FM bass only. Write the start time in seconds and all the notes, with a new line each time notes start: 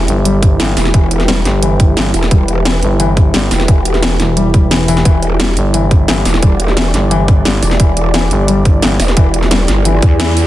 0.08 G1
0.60 G1
1.45 G1
1.97 G1
2.83 G1
3.34 G1
4.20 E1
5.57 G1
6.08 G1
6.94 G1
7.45 G1
8.31 G1
8.83 G1